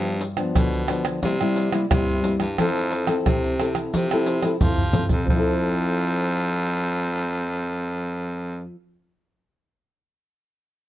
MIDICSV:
0, 0, Header, 1, 6, 480
1, 0, Start_track
1, 0, Key_signature, -1, "major"
1, 0, Tempo, 674916
1, 1835, Time_signature, 4, 2, 24, 8
1, 7744, End_track
2, 0, Start_track
2, 0, Title_t, "Nylon-string guitar"
2, 0, Program_c, 0, 24
2, 0, Note_on_c, 0, 43, 62
2, 0, Note_on_c, 0, 53, 56
2, 0, Note_on_c, 0, 59, 60
2, 0, Note_on_c, 0, 62, 61
2, 109, Note_off_c, 0, 53, 0
2, 112, Note_off_c, 0, 59, 0
2, 112, Note_off_c, 0, 62, 0
2, 263, Note_on_c, 0, 53, 63
2, 267, Note_on_c, 0, 59, 62
2, 272, Note_on_c, 0, 62, 71
2, 372, Note_off_c, 0, 43, 0
2, 397, Note_on_c, 0, 50, 53
2, 591, Note_off_c, 0, 53, 0
2, 593, Note_off_c, 0, 59, 0
2, 593, Note_off_c, 0, 62, 0
2, 632, Note_on_c, 0, 53, 60
2, 637, Note_on_c, 0, 59, 50
2, 639, Note_on_c, 0, 62, 65
2, 852, Note_off_c, 0, 50, 0
2, 855, Note_off_c, 0, 53, 0
2, 855, Note_off_c, 0, 59, 0
2, 858, Note_off_c, 0, 62, 0
2, 881, Note_on_c, 0, 48, 53
2, 883, Note_on_c, 0, 55, 60
2, 886, Note_on_c, 0, 64, 54
2, 888, Note_on_c, 0, 58, 52
2, 960, Note_off_c, 0, 55, 0
2, 961, Note_off_c, 0, 58, 0
2, 962, Note_off_c, 0, 64, 0
2, 1004, Note_on_c, 0, 55, 80
2, 1009, Note_on_c, 0, 58, 63
2, 1010, Note_on_c, 0, 64, 75
2, 1201, Note_off_c, 0, 55, 0
2, 1204, Note_off_c, 0, 58, 0
2, 1204, Note_off_c, 0, 64, 0
2, 1225, Note_on_c, 0, 55, 64
2, 1230, Note_on_c, 0, 58, 62
2, 1234, Note_on_c, 0, 64, 70
2, 1312, Note_off_c, 0, 55, 0
2, 1314, Note_off_c, 0, 58, 0
2, 1316, Note_off_c, 0, 64, 0
2, 1335, Note_off_c, 0, 48, 0
2, 1352, Note_on_c, 0, 43, 61
2, 1355, Note_on_c, 0, 55, 59
2, 1359, Note_on_c, 0, 58, 57
2, 1360, Note_on_c, 0, 64, 65
2, 1556, Note_off_c, 0, 55, 0
2, 1557, Note_off_c, 0, 58, 0
2, 1559, Note_off_c, 0, 64, 0
2, 1593, Note_on_c, 0, 55, 54
2, 1596, Note_on_c, 0, 58, 55
2, 1598, Note_on_c, 0, 64, 57
2, 1736, Note_off_c, 0, 55, 0
2, 1736, Note_off_c, 0, 58, 0
2, 1738, Note_off_c, 0, 64, 0
2, 1811, Note_off_c, 0, 43, 0
2, 1844, Note_on_c, 0, 60, 62
2, 1846, Note_on_c, 0, 53, 61
2, 1850, Note_on_c, 0, 64, 59
2, 1855, Note_on_c, 0, 69, 67
2, 2161, Note_off_c, 0, 60, 0
2, 2164, Note_off_c, 0, 64, 0
2, 2164, Note_off_c, 0, 69, 0
2, 2193, Note_on_c, 0, 60, 72
2, 2197, Note_on_c, 0, 64, 67
2, 2198, Note_on_c, 0, 69, 74
2, 2297, Note_off_c, 0, 53, 0
2, 2322, Note_on_c, 0, 48, 54
2, 2516, Note_off_c, 0, 60, 0
2, 2518, Note_off_c, 0, 64, 0
2, 2518, Note_off_c, 0, 69, 0
2, 2562, Note_on_c, 0, 60, 63
2, 2565, Note_on_c, 0, 64, 55
2, 2566, Note_on_c, 0, 69, 69
2, 2775, Note_off_c, 0, 48, 0
2, 2805, Note_on_c, 0, 53, 50
2, 2880, Note_off_c, 0, 60, 0
2, 2882, Note_off_c, 0, 64, 0
2, 2882, Note_off_c, 0, 69, 0
2, 2935, Note_on_c, 0, 60, 63
2, 2938, Note_on_c, 0, 64, 72
2, 2941, Note_on_c, 0, 69, 73
2, 3127, Note_off_c, 0, 60, 0
2, 3129, Note_off_c, 0, 64, 0
2, 3130, Note_off_c, 0, 69, 0
2, 3158, Note_on_c, 0, 60, 55
2, 3161, Note_on_c, 0, 64, 64
2, 3165, Note_on_c, 0, 69, 60
2, 3238, Note_off_c, 0, 60, 0
2, 3240, Note_off_c, 0, 64, 0
2, 3241, Note_off_c, 0, 69, 0
2, 3256, Note_off_c, 0, 53, 0
2, 3287, Note_on_c, 0, 48, 57
2, 3291, Note_on_c, 0, 64, 54
2, 3292, Note_on_c, 0, 60, 51
2, 3294, Note_on_c, 0, 69, 56
2, 3424, Note_off_c, 0, 60, 0
2, 3425, Note_off_c, 0, 64, 0
2, 3425, Note_off_c, 0, 69, 0
2, 3518, Note_on_c, 0, 60, 51
2, 3523, Note_on_c, 0, 64, 51
2, 3526, Note_on_c, 0, 69, 54
2, 3658, Note_off_c, 0, 60, 0
2, 3660, Note_off_c, 0, 64, 0
2, 3662, Note_off_c, 0, 69, 0
2, 3734, Note_on_c, 0, 53, 64
2, 3737, Note_off_c, 0, 48, 0
2, 3773, Note_on_c, 0, 60, 66
2, 3806, Note_on_c, 0, 64, 67
2, 3837, Note_on_c, 0, 69, 67
2, 6223, Note_off_c, 0, 53, 0
2, 6263, Note_off_c, 0, 60, 0
2, 6295, Note_off_c, 0, 64, 0
2, 6326, Note_off_c, 0, 69, 0
2, 7744, End_track
3, 0, Start_track
3, 0, Title_t, "Baritone saxophone"
3, 0, Program_c, 1, 67
3, 0, Note_on_c, 1, 43, 96
3, 157, Note_off_c, 1, 43, 0
3, 400, Note_on_c, 1, 47, 84
3, 806, Note_off_c, 1, 47, 0
3, 881, Note_on_c, 1, 48, 97
3, 1287, Note_off_c, 1, 48, 0
3, 1364, Note_on_c, 1, 48, 96
3, 1666, Note_off_c, 1, 48, 0
3, 1712, Note_on_c, 1, 43, 78
3, 1815, Note_off_c, 1, 43, 0
3, 1846, Note_on_c, 1, 41, 104
3, 2250, Note_off_c, 1, 41, 0
3, 2324, Note_on_c, 1, 48, 84
3, 2728, Note_off_c, 1, 48, 0
3, 2812, Note_on_c, 1, 48, 86
3, 3213, Note_off_c, 1, 48, 0
3, 3287, Note_on_c, 1, 53, 89
3, 3588, Note_off_c, 1, 53, 0
3, 3639, Note_on_c, 1, 41, 76
3, 3739, Note_off_c, 1, 41, 0
3, 3766, Note_on_c, 1, 41, 102
3, 6149, Note_off_c, 1, 41, 0
3, 7744, End_track
4, 0, Start_track
4, 0, Title_t, "Pandeiro"
4, 34, Note_on_c, 9, 54, 31
4, 105, Note_off_c, 9, 54, 0
4, 148, Note_on_c, 9, 54, 73
4, 219, Note_off_c, 9, 54, 0
4, 262, Note_on_c, 9, 54, 51
4, 333, Note_off_c, 9, 54, 0
4, 395, Note_on_c, 9, 54, 86
4, 466, Note_off_c, 9, 54, 0
4, 519, Note_on_c, 9, 54, 33
4, 590, Note_off_c, 9, 54, 0
4, 626, Note_on_c, 9, 54, 68
4, 698, Note_off_c, 9, 54, 0
4, 745, Note_on_c, 9, 54, 53
4, 816, Note_off_c, 9, 54, 0
4, 873, Note_on_c, 9, 54, 83
4, 944, Note_off_c, 9, 54, 0
4, 1000, Note_on_c, 9, 54, 32
4, 1071, Note_off_c, 9, 54, 0
4, 1111, Note_on_c, 9, 54, 67
4, 1182, Note_off_c, 9, 54, 0
4, 1226, Note_on_c, 9, 54, 54
4, 1298, Note_off_c, 9, 54, 0
4, 1357, Note_on_c, 9, 54, 88
4, 1428, Note_off_c, 9, 54, 0
4, 1482, Note_on_c, 9, 54, 34
4, 1553, Note_off_c, 9, 54, 0
4, 1592, Note_on_c, 9, 54, 70
4, 1663, Note_off_c, 9, 54, 0
4, 1705, Note_on_c, 9, 54, 48
4, 1776, Note_off_c, 9, 54, 0
4, 1837, Note_on_c, 9, 54, 80
4, 1908, Note_off_c, 9, 54, 0
4, 1963, Note_on_c, 9, 54, 31
4, 2034, Note_off_c, 9, 54, 0
4, 2072, Note_on_c, 9, 54, 72
4, 2143, Note_off_c, 9, 54, 0
4, 2185, Note_on_c, 9, 54, 59
4, 2256, Note_off_c, 9, 54, 0
4, 2319, Note_on_c, 9, 54, 75
4, 2390, Note_off_c, 9, 54, 0
4, 2447, Note_on_c, 9, 54, 36
4, 2518, Note_off_c, 9, 54, 0
4, 2557, Note_on_c, 9, 54, 67
4, 2628, Note_off_c, 9, 54, 0
4, 2666, Note_on_c, 9, 54, 50
4, 2737, Note_off_c, 9, 54, 0
4, 2800, Note_on_c, 9, 54, 88
4, 2871, Note_off_c, 9, 54, 0
4, 2924, Note_on_c, 9, 54, 30
4, 2996, Note_off_c, 9, 54, 0
4, 3033, Note_on_c, 9, 54, 69
4, 3105, Note_off_c, 9, 54, 0
4, 3147, Note_on_c, 9, 54, 58
4, 3218, Note_off_c, 9, 54, 0
4, 3277, Note_on_c, 9, 54, 81
4, 3348, Note_off_c, 9, 54, 0
4, 3400, Note_on_c, 9, 54, 28
4, 3471, Note_off_c, 9, 54, 0
4, 3509, Note_on_c, 9, 54, 68
4, 3580, Note_off_c, 9, 54, 0
4, 3622, Note_on_c, 9, 54, 52
4, 3693, Note_off_c, 9, 54, 0
4, 7744, End_track
5, 0, Start_track
5, 0, Title_t, "Tamborim"
5, 262, Note_on_c, 9, 60, 75
5, 333, Note_off_c, 9, 60, 0
5, 395, Note_on_c, 9, 60, 67
5, 466, Note_off_c, 9, 60, 0
5, 626, Note_on_c, 9, 60, 80
5, 698, Note_off_c, 9, 60, 0
5, 745, Note_on_c, 9, 60, 83
5, 816, Note_off_c, 9, 60, 0
5, 1000, Note_on_c, 9, 60, 69
5, 1071, Note_off_c, 9, 60, 0
5, 1226, Note_on_c, 9, 60, 74
5, 1298, Note_off_c, 9, 60, 0
5, 1357, Note_on_c, 9, 60, 90
5, 1428, Note_off_c, 9, 60, 0
5, 1705, Note_on_c, 9, 60, 69
5, 1776, Note_off_c, 9, 60, 0
5, 1837, Note_on_c, 9, 60, 84
5, 1908, Note_off_c, 9, 60, 0
5, 2185, Note_on_c, 9, 60, 78
5, 2256, Note_off_c, 9, 60, 0
5, 2319, Note_on_c, 9, 60, 71
5, 2390, Note_off_c, 9, 60, 0
5, 2557, Note_on_c, 9, 60, 73
5, 2628, Note_off_c, 9, 60, 0
5, 2666, Note_on_c, 9, 60, 74
5, 2737, Note_off_c, 9, 60, 0
5, 2924, Note_on_c, 9, 60, 78
5, 2996, Note_off_c, 9, 60, 0
5, 3147, Note_on_c, 9, 60, 68
5, 3218, Note_off_c, 9, 60, 0
5, 7744, End_track
6, 0, Start_track
6, 0, Title_t, "Drums"
6, 34, Note_on_c, 9, 82, 33
6, 105, Note_off_c, 9, 82, 0
6, 262, Note_on_c, 9, 82, 74
6, 333, Note_off_c, 9, 82, 0
6, 395, Note_on_c, 9, 82, 73
6, 395, Note_on_c, 9, 87, 97
6, 466, Note_off_c, 9, 82, 0
6, 466, Note_off_c, 9, 87, 0
6, 519, Note_on_c, 9, 82, 38
6, 590, Note_off_c, 9, 82, 0
6, 745, Note_on_c, 9, 82, 82
6, 816, Note_off_c, 9, 82, 0
6, 873, Note_on_c, 9, 82, 84
6, 873, Note_on_c, 9, 87, 70
6, 944, Note_off_c, 9, 82, 0
6, 944, Note_off_c, 9, 87, 0
6, 1000, Note_on_c, 9, 82, 34
6, 1071, Note_off_c, 9, 82, 0
6, 1226, Note_on_c, 9, 82, 80
6, 1298, Note_off_c, 9, 82, 0
6, 1357, Note_on_c, 9, 82, 86
6, 1357, Note_on_c, 9, 87, 103
6, 1428, Note_off_c, 9, 82, 0
6, 1428, Note_off_c, 9, 87, 0
6, 1482, Note_on_c, 9, 82, 32
6, 1553, Note_off_c, 9, 82, 0
6, 1592, Note_on_c, 9, 82, 75
6, 1663, Note_off_c, 9, 82, 0
6, 1705, Note_on_c, 9, 82, 70
6, 1776, Note_off_c, 9, 82, 0
6, 1837, Note_on_c, 9, 82, 82
6, 1837, Note_on_c, 9, 87, 56
6, 1908, Note_off_c, 9, 82, 0
6, 1908, Note_off_c, 9, 87, 0
6, 1963, Note_on_c, 9, 82, 31
6, 2034, Note_off_c, 9, 82, 0
6, 2185, Note_on_c, 9, 82, 82
6, 2256, Note_off_c, 9, 82, 0
6, 2319, Note_on_c, 9, 82, 67
6, 2319, Note_on_c, 9, 87, 88
6, 2390, Note_off_c, 9, 82, 0
6, 2390, Note_off_c, 9, 87, 0
6, 2447, Note_on_c, 9, 82, 34
6, 2518, Note_off_c, 9, 82, 0
6, 2666, Note_on_c, 9, 82, 78
6, 2737, Note_off_c, 9, 82, 0
6, 2800, Note_on_c, 9, 82, 89
6, 2800, Note_on_c, 9, 87, 59
6, 2871, Note_off_c, 9, 82, 0
6, 2871, Note_off_c, 9, 87, 0
6, 2924, Note_on_c, 9, 82, 33
6, 2996, Note_off_c, 9, 82, 0
6, 3033, Note_on_c, 9, 82, 73
6, 3105, Note_off_c, 9, 82, 0
6, 3147, Note_on_c, 9, 82, 79
6, 3218, Note_off_c, 9, 82, 0
6, 3277, Note_on_c, 9, 82, 94
6, 3277, Note_on_c, 9, 87, 114
6, 3348, Note_off_c, 9, 82, 0
6, 3348, Note_off_c, 9, 87, 0
6, 3400, Note_on_c, 9, 82, 32
6, 3400, Note_on_c, 9, 87, 74
6, 3471, Note_off_c, 9, 82, 0
6, 3471, Note_off_c, 9, 87, 0
6, 3509, Note_on_c, 9, 87, 84
6, 3580, Note_off_c, 9, 87, 0
6, 3622, Note_on_c, 9, 82, 67
6, 3622, Note_on_c, 9, 87, 92
6, 3693, Note_off_c, 9, 82, 0
6, 3693, Note_off_c, 9, 87, 0
6, 3755, Note_on_c, 9, 87, 103
6, 3826, Note_off_c, 9, 87, 0
6, 7744, End_track
0, 0, End_of_file